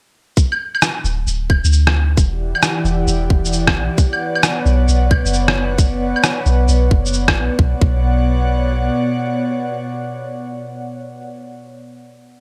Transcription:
0.37 kick, shaker
0.52 claves
0.75 claves
0.82 cross-stick, shaker
1.04 D1, shaker
1.27 D1, shaker
1.50 kick, claves
1.64 D2, shaker
1.73 shaker
1.87 cross-stick
2.17 E1 E3 E4 G4 D5 F#5, kick, shaker
2.55 claves
2.63 cross-stick, shaker
2.85 E1, shaker
3.07 E1, shaker
3.30 E1, kick
3.45 shaker
3.53 shaker
3.67 kick, cross-stick
3.75 B1
3.98 B3 B4 C#5, kick, shaker
4.13 claves
4.35 claves
4.43 cross-stick, shaker
4.66 B1, shaker
4.88 B1, shaker
5.11 kick, claves
5.25 F#1, shaker
5.33 shaker
5.48 cross-stick
5.78 kick, shaker
6.16 claves
6.24 cross-stick, shaker
6.46 B1, shaker
6.68 B1, shaker
6.91 F#1, kick
7.06 shaker
7.13 shaker
7.28 kick, cross-stick
7.36 B1
7.58 B1 B2 B3 C#5 D5 F#5, kick
7.81 B1, kick

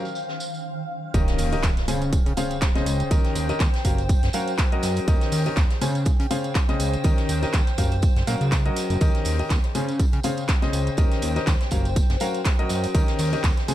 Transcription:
Already playing: C5 F5 G5
0.05 closed hi-hat, tambourine
0.15 tambourine
0.29 snare
0.40 tambourine
0.54 tambourine
1.14 D#2 D#3 C#4 G4 A#4 D#5 G5, kick, closed hi-hat, tambourine, impact
1.27 snare, closed hi-hat
1.38 D#2 C5, open hi-hat, tambourine
1.52 D#3 C#4 G4 A#4 D#5, closed hi-hat, tambourine
1.63 D#2, kick, snare, clap, closed hi-hat, tambourine
1.77 snare, closed hi-hat
1.88 C#3 C#4 G#4 C5 G#5, open hi-hat, tambourine
2.02 closed hi-hat, tambourine
2.13 kick, closed hi-hat, tambourine
2.26 C#3, closed hi-hat
2.37 C#3 C#4 G#4 C5 F5, open hi-hat, tambourine
2.51 closed hi-hat, tambourine
2.61 kick, snare, clap, closed hi-hat, tambourine
2.75 C#3 C#4 G#4 C5 D#5, snare, closed hi-hat
2.86 C#2, open hi-hat, tambourine
3.00 closed hi-hat, tambourine
3.11 D#2 D#3 C#4 G4 A#4 D#5, kick, closed hi-hat, tambourine
3.25 snare, closed hi-hat
3.35 D#2, open hi-hat, tambourine
3.49 D#3 C#4 G4 A#4 D#5, snare, closed hi-hat, tambourine
3.60 D#2, kick, snare, clap, closed hi-hat, tambourine
3.74 snare, closed hi-hat
3.85 F#1 F#3 C#4 G4 A#4 F5, kick, open hi-hat, tambourine
3.98 closed hi-hat, tambourine
4.09 kick, closed hi-hat, tambourine
4.23 F#1, snare, closed hi-hat
4.33 F#3 C#4 F#4 A#4 F5, open hi-hat, tambourine
4.48 closed hi-hat, tambourine
4.59 kick, snare, clap, closed hi-hat, tambourine
4.72 F#3 C#4 F#4 A#4 D#5, closed hi-hat
4.83 F#2, snare, open hi-hat, tambourine
4.96 open hi-hat, tambourine
5.08 D#2 D#3 C#4 G4 A#4 D#5 G5, kick, closed hi-hat, tambourine
5.21 snare, closed hi-hat
5.27 C5
5.32 D#2, open hi-hat, tambourine
5.46 D#3 C#4 G4 A#4 D#5, closed hi-hat, tambourine
5.56 D#2, kick, snare, clap, closed hi-hat, tambourine
5.70 snare, closed hi-hat
5.81 C#3 C#4 G#4 C5 G#5, open hi-hat, tambourine
5.95 closed hi-hat, tambourine
6.05 kick, closed hi-hat, tambourine
6.20 C#3, closed hi-hat
6.31 C#3 C#4 G#4 C5 F5, open hi-hat, tambourine
6.44 closed hi-hat, tambourine
6.55 kick, snare, clap, closed hi-hat, tambourine
6.69 C#3 C#4 G#4 C5 D#5, snare, closed hi-hat
6.80 C#2, open hi-hat, tambourine
6.93 closed hi-hat, tambourine
7.04 D#2 D#3 C#4 G4 A#4 D#5, kick, closed hi-hat, tambourine
7.18 snare, closed hi-hat
7.29 D#2, open hi-hat, tambourine
7.43 D#3 C#4 G4 A#4 D#5, snare, closed hi-hat, tambourine
7.54 D#2, kick, snare, clap, closed hi-hat, tambourine
7.67 snare, closed hi-hat
7.78 F#1 F#3 C#4 G4 A#4 F5, kick, open hi-hat, tambourine
7.92 closed hi-hat, tambourine
8.02 kick, closed hi-hat, tambourine
8.16 F#1, snare, closed hi-hat
8.27 A#2 F#3 C#4 F#4 A#4 F5, open hi-hat, tambourine
8.41 C#2, closed hi-hat, tambourine
8.52 kick, snare, clap, closed hi-hat, tambourine
8.66 F#3 C#4 F#4 A#4 D#5, closed hi-hat
8.76 snare, open hi-hat, tambourine
8.90 F#1, open hi-hat, tambourine
9.01 D#2 D#3 C#4 G4 A#4 D#5 G5, kick, closed hi-hat, tambourine
9.15 snare, closed hi-hat
9.25 D#2, open hi-hat, tambourine
9.35 D#3 A#4 C5 D#5, closed hi-hat
9.39 C#4 G4, tambourine
9.50 D#2, kick, snare, clap, closed hi-hat, tambourine
9.64 snare, closed hi-hat
9.75 C#3 C#4 G#4 C5 G#5, open hi-hat, tambourine
9.88 closed hi-hat, tambourine
9.99 kick, closed hi-hat, tambourine
10.13 C#3, closed hi-hat
10.23 C#3 C#4 G#4 C5 F5, open hi-hat, tambourine
10.37 closed hi-hat, tambourine
10.48 kick, snare, clap, closed hi-hat, tambourine
10.62 C#3 C#4 G#4 C5 D#5, snare, closed hi-hat
10.73 C#2, open hi-hat, tambourine
10.87 closed hi-hat, tambourine
10.97 D#2 D#3 C#4 G4 A#4 D#5, kick, closed hi-hat, tambourine
11.12 snare, closed hi-hat
11.22 D#2, open hi-hat, tambourine
11.36 D#3 C#4 G4 A#4 D#5, snare, closed hi-hat, tambourine
11.47 D#2, kick, snare, clap, closed hi-hat, tambourine
11.61 snare, closed hi-hat
11.71 F#1 F#3 C#4 G4 A#4 F5, kick, open hi-hat, tambourine
11.85 closed hi-hat, tambourine
11.96 kick, closed hi-hat, tambourine
12.10 F#1, snare, closed hi-hat
12.20 F#3 C#4 F#4 A#4 F5, open hi-hat, tambourine
12.35 closed hi-hat, tambourine
12.45 kick, snare, clap, closed hi-hat, tambourine
12.59 F#3 C#4 F#4 A#4 D#5, closed hi-hat
12.69 F#2, snare, open hi-hat, tambourine
12.84 open hi-hat, tambourine
12.94 D#2 D#3 C#4 G4 A#4 D#5 G5, kick, closed hi-hat, tambourine
13.07 snare, closed hi-hat
13.19 D#2, open hi-hat, tambourine
13.29 C#4 G4 C5 D#5
13.33 D#3 A#4, closed hi-hat, tambourine
13.44 D#2, kick, snare, clap, closed hi-hat, tambourine
13.57 snare, closed hi-hat
13.68 C#3 C#4 G#4 C5 G#5, open hi-hat, tambourine

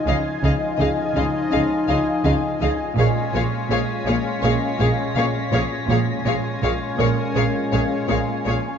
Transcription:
0.06 C#2 C#3 F3 D#4 F4 G#4 D#5 F5 G#5
0.43 C#2 C#3 G#4 D#5 F5
0.79 C#2 C#3 G#4 D#5 F5
1.15 C#2 C#3 G#4 D#5 F5
1.52 C#2 C#3 C#4 G#4 D#5 F5
1.88 C#2 C#3 G#4 D#5 F5
2.25 C#2 C#3 G#4 D#5 F5
2.61 C#2 C#3 G#4 D#5 F5
2.97 A#1 A#2 G#3 C#4 F4 G#4 C#5 F5 G#5 A#6 B6
3.33 A#1 A#2 G#4 C#5 F5
3.70 A#1 A#2 G#4 C#5 F5
4.06 A#1 A#2 G#4 C#5 F5
4.43 A#1 A#2 A#3 G#4 C#5 F5
4.80 A#1 A#2 G#4 C#5 F5
5.16 A#1 A#2 G#4 C#5 F5
5.52 A#1 A#2 G#4 C#5 F5
5.88 A#1 A#2 G#3 C#4 F4 G#4 C#5 F5 G#5
6.25 A#1 A#2 G#4 C#5 F5
6.52 A#6
6.61 A#1 A#2 G#4 C#5 F5
6.98 A#1 A#2 G#4 A#4 C#5 F5
7.35 A#1 A#2 A#3 G#4 C#5 F5
7.72 A#1 A#2 G#4 C#5 F5
8.09 A#1 A#2 G#4 C#5 F5
8.46 A#1 A#2 G#4 C#5 F5

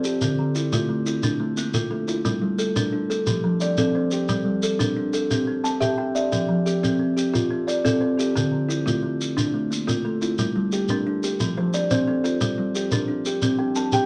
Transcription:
Already playing: C4 A4 C5
0.04 G4 A4, shekere
0.21 D3, shekere
0.39 D3
0.55 E4, shekere
0.72 A3 F4, shekere
0.89 A3
1.06 E4, shekere
1.23 D4, shekere
1.40 A3
1.57 A#3, shekere
1.74 A3 F4, shekere
1.91 A3 A4
2.08 E4 F4, shekere
2.25 G3, shekere
2.42 G3
2.59 A4, shekere
2.76 D4 A#4, shekere
2.93 D4
3.10 A4, shekere
3.26 F3 G4, shekere
3.44 F3
3.60 D5, shekere
3.77 C4 A4, shekere
3.95 C4 C5
4.11 G4 A4, shekere
4.29 G3, shekere
4.45 G3
4.63 A4, shekere
4.79 D4 A#4, shekere
4.96 D4
5.13 A4, shekere
5.31 C4 G4, shekere
5.47 C4
5.64 A5, shekere
5.81 G4 E5, shekere
5.98 G4 G5
6.15 D5 E5, shekere
6.32 F3, shekere
6.48 F3
6.66 G4, shekere
6.83 C4 A4, shekere
6.99 C4
7.17 G4, shekere
7.33 F4, shekere
7.50 C4
7.67 D5, shekere
7.85 C4 A4, shekere
8.01 C4 C5
8.17 G4 A4, shekere
8.36 D3, shekere
8.52 D3
8.69 E4, shekere
8.86 A3 F4, shekere
9.03 A3
9.21 shekere
9.37 D4, shekere
9.54 A3
9.71 A#3, shekere
9.87 A3 F4, shekere
10.05 A3 A4
10.21 E4 F4, shekere
10.38 G3, shekere
10.56 G3
10.72 G4, shekere
10.88 D4 A#4, shekere
11.07 D4
11.23 G4, shekere
11.40 F3 G4, shekere
11.57 F3 C5
11.74 D5, shekere
11.91 C4 C5, shekere
12.07 C4 A4
12.24 F4 A4, shekere
12.41 G3, shekere
12.58 G3
12.75 G4, shekere
12.91 D4 A#4, shekere
13.08 D4
13.25 G4, shekere
13.42 C4 G4, shekere
13.58 C4 G5
13.75 A5, shekere
13.92 G4 G5, shekere

